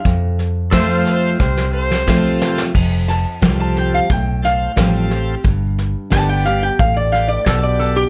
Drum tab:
CC |----------------|x---------------|----------------|
HH |----p-------p---|----p-------p---|----p-------p---|
SD |o-o-o-o-oo-oo-oo|o-o-o-o-o-o-o-o-|o-o-o-o-o-o-o-o-|
BD |o---o---o---o---|o---o---o---o---|o---o---o---o---|